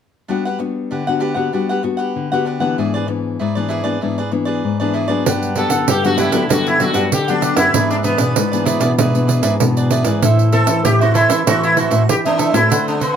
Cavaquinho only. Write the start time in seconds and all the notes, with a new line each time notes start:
0.28 D4 G4 B4 F#5
0.45 G4 B4 F#5
0.59 muted cavaquinho stroke
0.91 D4 G4 B4 F#5
1.07 G4 B4 F#5
1.20 D4 G4 B4 F#5
1.34 G4 B4 F#5
1.53 D4 G4 B4 F#5
1.69 G4 B4 F#5
1.83 muted cavaquinho stroke
1.97 G4 B4 F#5
2.32 G4 B4 F#5
2.45 D4 G4 B4 F#5
2.60 G4 B4 F#5
2.78 E4 G#4 B4 D5
2.94 G#4 B4 D5
3.07 muted cavaquinho stroke
3.40 E4 G#4 B4 D5
3.55 G#4 B4 D5
3.69 E4 G#4 B4 D5
3.84 G#4 B4 D5
4.01 E4 G#4 B4 D5
4.18 G#4 B4 D5
4.32 muted cavaquinho stroke
4.45 G#4 B4 D5
4.80 G#4 B4 D5
4.94 E4 G#4 B4 D5
5.08 G#4 B4 D5
5.26 D4 G4 B4 F#5
5.56 D4 G4 B4 F#5
5.70 G4 B4 F#5
6.04 G4 B4 F#5
6.17 D4 G4 B4 F#5
6.32 D4 G4 B4 F#5
6.49 D4 G4 B4 F#5
6.79 D4 G4 B4 F#5
6.94 D4 G4 B4 F#5
7.28 G4 B4 F#5
7.41 D4 G4 B4 F#5
7.56 G4 B4 F#5
7.73 E4 G#4 B4 D5
8.03 E4 G#4 B4 D5
8.17 G#4 B4 D5
8.51 G#4 B4 D5
8.65 E4 G#4 B4 D5
8.80 E4 G#4 B4 D5
8.98 E4 G#4 B4 D5
9.27 E4 G#4 B4 D5
9.43 E4 G#4 B4 D5
9.77 G#4 B4 D5
9.90 E4 G#4 B4 D5
10.06 G#4 B4 D5
10.23 E4 A4 C5 E5
10.52 E4 A4 C5 E5
10.66 A4 C5 E5
11.00 A4 C5 E5
11.14 E4 A4 C5 E5
11.29 E4 A4 C5 E5
11.47 E4 A4 C5 E5
11.77 E4 A4 C5 E5
11.91 E4 A4 C5 E5
12.25 A4 C5 E5
12.38 E4 A4 C5 E5
12.52 A4 C5 E5
12.70 D4 A4 C5 F#5
12.99 D4 A4 C5 F#5